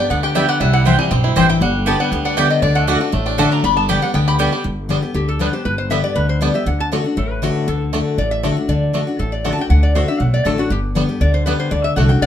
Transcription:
Already playing: G3 G4
0.00 B3 D4
0.10 D2 D3 B3 F#5
0.23 G4 G5
0.35 D3 G3 B3 G4 D5 E5 G5
0.49 G4 F#5
0.60 C2 C3 G3 E5
0.73 E4 F#5
0.85 E3 G3 C4 E4 C5 G5
0.98 G3 C4 E4 G#5
1.11 B1 G2 C4 G5
1.24 E4 C5
1.36 A1 E3 G3 C4 E4 G4 C5 E5 G5
1.49 E4 G5
1.61 G1 G2 G3 F#5
1.86 D3 G3 B3 G4 D5 G5 A5
2.00 G3 F#5
2.11 D2 D3 B3 G5
2.25 D4 F#5
2.37 D3 G3 B3 G4 D5 E5 G5
2.50 D4 D#5
2.62 D2 D3 D4 D5
2.75 A3 F#5
2.87 D3 A3 D4 F#4 D5 F#5
3.00 D4 F#4
3.12 A1 A2 A3
3.26 D4 G5
3.38 D3 A3 D4 F#4 D5 F#5 A5
3.52 D4 A#5
3.64 G1 G2 D4 B5
3.77 B3 A5
3.89 D3 G3 B3 G4 D5 G5
4.02 B3 D4 G4 F#5
4.14 D2 D3 B3 G5
4.28 G4 B5
4.39 D3 G3 B3 G4 D5 G5
4.52 B3 G4
4.64 G1 G2
4.89 D3 G3 B3 D4 G4
5.02 B3 G4
5.14 D2 D3 G4
5.29 A4
5.39 D3 G3 B3 D4 G4 B4
5.53 B3 G4 C5
5.65 G1 G2 B4
5.78 C5
5.90 D3 G3 B3 D4 G4 E5
6.04 B3 G4 D5
6.15 D2 D3 B4
6.29 C5
6.41 D3 G3 B3 D4 G4 D5
6.54 B3 G4 E5
6.66 D2 D3 F#5
6.80 A5
6.92 D3 A3 D4 F#4
7.04 D4 F#4
7.17 A1 A2 A4
7.30 B4
7.42 D3 A3 D4 F#4
7.68 D2 D3 A4
7.93 D3 A3 D4 F#4
8.18 A1 A2 D5
8.31 E5
8.43 D3 A3 D4 F#4
8.57 D4 F#4
8.68 D2 D3 D5
8.93 D3 A3 D4 F#4
9.07 D4 F#4
9.19 A1 A2 A4
9.32 D5
9.44 D3 A3 D4 F#4 F#5
9.53 A5
9.58 D4 F#4 G5
9.70 D2 D3 F#5
9.83 D5
9.95 D3 A3 D4 F#4 C5
10.08 D4 F#4 E5
10.20 B1 A2 F#5
10.34 D5
10.45 A1 D3 A3 D4 F#4 A4
10.58 D4 F#4
10.70 G1 G2 G4
10.95 D3 G3 B3 D4 G4
11.09 B3 G4
11.20 D2 D3 D5
11.34 C5
11.46 D3 G3 B3 D4 G4 B4
11.60 C5
11.71 D2 D3 D5
11.84 E5
11.96 C2 D3 A3 D4 F#4 F#5
12.09 D4 F#4 G5
12.22 B1 A2 D5 F#5

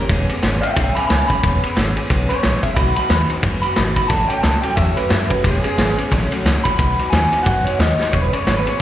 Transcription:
0.09 E1 E3 G#3 B3 C#4 G#4, kick, ride
0.28 B3 C#4 G#4, muted upright bass stroke, ride
0.42 G#1 G#3 B3 C#4 G#4, snare, ride
0.61 B3 C#4 G#4 E5 G5, muted upright bass stroke, ride
0.74 B1 E3 G#3 B3 C#4 G#4 E5 G5, kick, ride
0.95 B3 C#4 G#4 G#5 B5, muted upright bass stroke, ride
1.07 C#2 G#3 B3 C#4 G#5 B5, snare, ride
1.11 G#4
1.28 B3 C#4 G#4 B5, muted upright bass stroke, kick, ride
1.43 E1 E3 G#3 B3 C#4 G#4, kick, ride
1.63 B3 C#4 G#4, muted upright bass stroke, ride
1.76 G#1 G#3 B3 C#4 G#4, snare, ride
1.96 B3 C#4 G#4, muted upright bass stroke, ride
2.09 B1 E3 G#3 B3 C#4 G#4, kick, ride
2.29 B3 C#4 G#4 C#5, muted upright bass stroke, ride
2.42 A#1 G#3 B3 C#4 G#4, snare, ride
2.63 B3 C#4 G#4 E5, muted upright bass stroke, kick, ride
2.76 B1 B2 G#3 B3 D#4 F#4 B5, kick, ride
2.95 B3 D#4 F#4 B5, muted upright bass stroke, ride
3.09 D#2 G#3 B3 D#4 F#4, snare, ride
3.29 B3 D#4 F#4, muted upright bass stroke, ride
3.43 F#2 B2 G#3 B3 D#4 F#4, kick, ride
3.62 B3 D#4 F#4 B5, muted upright bass stroke, ride
3.76 G#1 G#3 B3 D#4 F#4, snare, ride
3.96 B3 D#4 F#4 B5, kick, ride
4.08 A1 A2 E3 F#3 A3 C#4 F#4 A5, kick, ride
4.29 F#3 A3 C#4 F#4 G5, muted upright bass stroke, ride
4.41 C#2 F#3 A3 C#4 F#4 A5, snare, ride
4.62 F#3 A3 C#4 F#4 G5, muted upright bass stroke, ride
4.76 E2 A2 E3 F#3 A3 C#4 F#4 E5, kick, ride
4.96 F#3 A3 C#4 F#4 B4, muted upright bass stroke, ride
5.09 F#2 F#3 A3 C#4 F#4 E5, snare, ride
5.29 F#3 A3 C#4 F#4 B4, kick, ride
5.42 E1 E3 G#3 B3 C#4 G4 G#4, kick, ride
5.63 B3 C#4 G#4, ride
5.77 G#1 G#3 B3 C#4 G#4, snare, ride
5.96 B3 C#4 G#4, muted upright bass stroke, ride
6.10 A1 A2 E3 F#3 A3 C#4 F#4, kick, ride
6.30 F#3 A3 C#4 F#4, muted upright bass stroke, ride
6.44 C#2 F#3 A3 C#4 F#4, snare, ride
6.64 F#3 A3 C#4 F#4 B5, kick, ride
6.77 B1 B2 G#3 B3 D#4 F#4 B5, kick, ride
6.98 B3 D#4 F#4, muted upright bass stroke, ride
7.10 D#2 G#3 B3 D#4 F#4 G#5, snare, ride
7.30 B3 D#4 F#4, muted upright bass stroke, ride
7.43 F#2 B2 G#3 B3 D#4 F#4 F#5, kick, ride
7.65 B3 D#4 F#4 C#5, muted upright bass stroke, ride
7.78 D#2 G#3 B3 D#4 F#4 D#5, snare, ride
7.98 B3 D#4 F#4, muted upright bass stroke, snare
8.12 E1 E3 G#3 B3 C#4 G#4 C#5, kick, ride
8.22 B4
8.32 B3 C#4 G#4 C#5, muted upright bass stroke, ride
8.44 G#1 G#3 B3 C#4 G#4 C#5, snare, ride
8.57 B4
8.65 B3 C#4 G#4 C#5, ride
8.78 B4

